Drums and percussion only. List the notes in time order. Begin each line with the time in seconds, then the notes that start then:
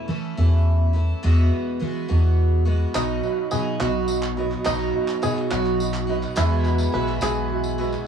2.94 clap, tambourine
3.23 tambourine
3.51 tambourine
3.81 clap
4.08 tambourine
4.23 clap
4.51 clap
4.65 clap, tambourine
4.79 clap, tambourine
5.08 clap, tambourine
5.23 clap, tambourine
5.37 clap
5.51 clap
5.65 clap
5.80 tambourine
5.94 clap, tambourine
6.23 clap, tambourine
6.36 clap, tambourine
6.52 clap
6.64 clap, tambourine
6.78 clap, tambourine
7.08 clap
7.21 clap, tambourine
7.64 tambourine
7.78 tambourine
7.92 clap, tambourine